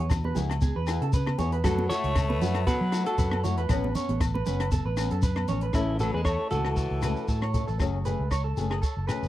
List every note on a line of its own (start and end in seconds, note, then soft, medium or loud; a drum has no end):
0.00 0.31 E2 medium
0.10 kick medium
0.10 cross-stick medium
0.10 closed hi-hat medium
0.10 low agogo medium
0.10 shekere medium
0.24 0.36 B4 medium
0.24 high conga medium
0.35 0.71 C#2 medium
0.35 0.53 B3 soft
0.35 0.53 E4 soft
0.35 0.52 G#4 soft
0.35 closed hi-hat soft
0.35 low conga medium
0.35 shekere medium
0.50 cross-stick medium
0.50 closed hi-hat soft
0.50 low agogo medium
0.61 0.75 G#4 medium
0.61 kick medium
0.61 closed hi-hat soft
0.61 high conga medium
0.61 shekere medium
0.76 0.98 E2 medium
0.76 1.00 B4 medium
0.87 1.05 B3 soft
0.87 1.04 E4 medium
0.87 1.04 G#4 medium
0.87 cross-stick medium
0.87 closed hi-hat soft
0.87 low agogo medium
0.87 shekere medium
1.02 1.34 C#3 medium
1.02 1.13 A4 medium
1.02 closed hi-hat soft
1.13 1.38 B4 medium
1.13 kick medium
1.13 closed hi-hat soft
1.13 shekere loud
1.26 cross-stick medium
1.26 high conga medium
1.26 low agogo medium
1.38 1.61 E2 medium
1.38 1.56 B3 soft
1.38 1.55 E4 soft
1.38 1.55 G#4 medium
1.38 1.52 C#5 medium
1.38 closed hi-hat soft
1.38 low conga medium
1.38 shekere medium
1.52 1.63 B4 medium
1.52 closed hi-hat soft
1.64 1.87 F#2 loud
1.64 1.81 E3 medium
1.64 1.89 F#3 medium
1.64 1.81 A3 medium
1.64 1.81 E4 medium
1.64 1.88 F#4 medium
1.64 1.81 F#4 medium
1.64 1.88 A4 medium
1.64 1.89 B4 medium
1.64 kick medium
1.64 cross-stick medium
1.64 closed hi-hat soft
1.64 low conga medium
1.64 low agogo medium
1.64 shekere medium
1.78 high conga medium
1.89 2.64 A3 loud
1.89 2.08 A3 soft
1.89 2.07 E4 medium
1.89 2.06 F#4 medium
1.89 2.63 A4 medium
1.89 2.63 C#5 loud
1.89 2.14 C#5 medium
1.89 closed hi-hat soft
1.89 low conga medium
1.89 shekere medium
2.04 2.42 C#2 medium
2.04 closed hi-hat soft
2.15 kick medium
2.15 cross-stick medium
2.15 closed hi-hat medium
2.15 low agogo medium
2.15 shekere medium
2.29 2.40 B4 medium
2.29 high conga medium
2.41 2.64 F#2 medium
2.41 2.59 A3 soft
2.41 2.58 E4 soft
2.41 2.58 F#4 medium
2.41 2.66 B4 medium
2.41 closed hi-hat soft
2.41 low conga medium
2.41 shekere medium
2.55 cross-stick medium
2.55 closed hi-hat soft
2.55 low agogo medium
2.67 3.04 F#3 medium
2.67 3.04 F#4 medium
2.67 2.80 A4 medium
2.67 3.04 B4 loud
2.67 kick medium
2.67 closed hi-hat soft
2.67 high conga medium
2.67 shekere medium
2.80 3.03 F#3 medium
2.80 3.05 B4 medium
2.92 3.11 A3 soft
2.92 3.10 E4 medium
2.92 3.10 F#4 medium
2.92 cross-stick medium
2.92 closed hi-hat soft
2.92 low agogo medium
2.92 shekere medium
3.06 3.42 F#3 medium
3.06 3.42 F#4 medium
3.06 3.41 A4 medium
3.06 3.18 A4 medium
3.06 closed hi-hat medium
3.18 3.58 F#2 loud
3.18 3.43 B4 medium
3.18 kick medium
3.18 closed hi-hat soft
3.18 shekere medium
3.31 cross-stick medium
3.31 high conga medium
3.31 low agogo medium
3.44 3.61 A3 soft
3.44 3.61 E4 medium
3.44 3.60 F#4 soft
3.44 3.57 C#5 medium
3.44 closed hi-hat medium
3.44 low conga medium
3.44 shekere medium
3.58 3.68 E2 medium
3.58 3.69 B4 medium
3.58 closed hi-hat medium
3.69 3.92 A1 medium
3.69 3.86 E3 medium
3.69 3.86 B3 medium
3.69 3.86 C#4 medium
3.69 3.94 B4 medium
3.69 kick medium
3.69 cross-stick medium
3.69 closed hi-hat medium
3.69 low conga medium
3.69 low agogo medium
3.69 shekere medium
3.84 high conga medium
3.95 4.12 B3 medium
3.95 4.11 C#4 medium
3.95 4.20 C#5 medium
3.95 closed hi-hat medium
3.95 low conga medium
3.95 shekere medium
4.09 4.42 A1 medium
4.09 closed hi-hat medium
4.09 high conga medium
4.21 kick medium
4.21 cross-stick medium
4.21 closed hi-hat medium
4.21 low agogo medium
4.21 shekere loud
4.34 4.45 B4 medium
4.34 high conga medium
4.46 4.81 F#1 medium
4.46 4.63 B3 soft
4.46 4.62 C#4 medium
4.46 4.71 B4 medium
4.46 closed hi-hat medium
4.46 low conga medium
4.46 shekere medium
4.60 cross-stick medium
4.60 closed hi-hat soft
4.60 low agogo medium
4.71 4.85 A4 medium
4.71 kick medium
4.71 closed hi-hat soft
4.71 high conga medium
4.71 shekere loud
4.85 5.08 A1 medium
4.85 5.10 B4 medium
4.97 5.15 B3 soft
4.97 5.14 C#4 medium
4.97 cross-stick medium
4.97 closed hi-hat soft
4.97 low agogo medium
4.97 shekere medium
5.11 5.44 F#2 medium
5.11 5.23 A4 medium
5.11 closed hi-hat soft
5.22 5.48 B4 medium
5.22 kick medium
5.22 closed hi-hat soft
5.22 shekere loud
5.36 cross-stick medium
5.36 high conga medium
5.36 low agogo medium
5.48 5.72 A1 medium
5.48 5.65 C#4 medium
5.48 5.62 C#5 medium
5.48 closed hi-hat medium
5.48 low conga medium
5.48 shekere medium
5.52 muted steel-string acoustic guitar stroke soft
5.61 5.74 B4 medium
5.61 closed hi-hat soft
5.73 6.09 A1 medium
5.73 5.91 E3 medium
5.73 5.91 A3 medium
5.73 5.99 C#4 medium
5.73 5.92 C#4 medium
5.73 5.99 E4 medium
5.73 5.99 A4 medium
5.73 5.92 A4 medium
5.73 kick medium
5.73 cross-stick medium
5.73 low agogo medium
5.73 shekere medium
5.78 6.00 C#3 medium
5.99 6.15 F#3 medium
5.99 6.18 A3 soft
5.99 6.17 C#4 soft
5.99 6.13 F#4 medium
5.99 6.16 A4 soft
5.99 6.13 A4 medium
5.99 6.25 B4 medium
5.99 closed hi-hat soft
5.99 shekere medium
6.14 6.36 E2 medium
6.14 6.26 G#3 medium
6.14 6.24 G#4 medium
6.14 6.25 B4 medium
6.25 6.51 A3 medium
6.25 6.49 A4 medium
6.25 6.49 C#5 medium
6.25 6.39 C#5 medium
6.25 kick medium
6.25 cross-stick medium
6.25 low agogo medium
6.25 shekere medium
6.39 6.64 A4 medium
6.50 6.86 C#2 medium
6.50 7.51 E3 medium
6.50 6.69 A3 soft
6.50 6.68 C#4 soft
6.50 7.50 F#4 medium
6.50 7.50 A4 medium
6.50 6.68 A4 soft
6.50 closed hi-hat soft
6.50 shekere medium
6.64 cross-stick medium
6.64 low agogo medium
6.77 7.02 A4 medium
6.77 kick medium
6.77 shekere medium
6.91 7.14 C#2 medium
7.02 7.20 A3 soft
7.02 7.20 C#4 soft
7.02 7.19 A4 soft
7.02 7.27 B4 medium
7.02 cross-stick medium
7.02 closed hi-hat soft
7.02 low agogo medium
7.02 shekere medium
7.16 shekere soft
7.28 7.63 A2 medium
7.28 7.42 A4 medium
7.28 kick medium
7.28 shekere medium
7.42 7.67 C#5 medium
7.42 cross-stick medium
7.42 low agogo medium
7.54 7.72 A3 soft
7.54 7.71 A4 medium
7.54 muted steel-string acoustic guitar stroke soft
7.54 kick medium
7.54 closed hi-hat soft
7.54 shekere medium
7.68 7.79 A1 medium
7.68 7.78 A4 medium
7.68 shekere soft
7.80 8.15 F#1 medium
7.80 7.96 F#3 medium
7.80 7.97 A3 medium
7.80 7.97 C#4 medium
7.80 7.97 G#4 medium
7.80 muted clean electric guitar stroke medium
7.80 kick medium
7.80 cross-stick medium
7.80 low agogo medium
7.80 shekere medium
8.05 8.23 A3 soft
8.05 8.23 C#4 soft
8.05 8.22 G#4 medium
8.05 8.30 B4 medium
8.05 closed hi-hat soft
8.05 shekere medium
8.20 8.53 C#2 medium
8.31 8.44 C#5 medium
8.31 kick medium
8.31 cross-stick medium
8.31 low agogo medium
8.31 shekere medium
8.44 8.69 A4 medium
8.57 8.80 F#1 medium
8.57 8.75 A3 soft
8.57 8.74 C#4 soft
8.57 8.74 G#4 medium
8.57 closed hi-hat soft
8.57 shekere medium
8.70 8.81 G#4 medium
8.70 cross-stick medium
8.70 low agogo medium
8.82 9.07 A4 medium
8.82 kick medium
8.82 shekere medium
8.97 9.07 F#1 medium
9.07 9.26 A3 soft
9.07 9.26 C#4 medium
9.07 9.25 G#4 medium
9.07 9.28 B4 medium
9.07 cross-stick medium
9.07 closed hi-hat soft
9.07 low agogo medium
9.07 shekere medium
9.23 9.28 F#1 medium
9.23 shekere soft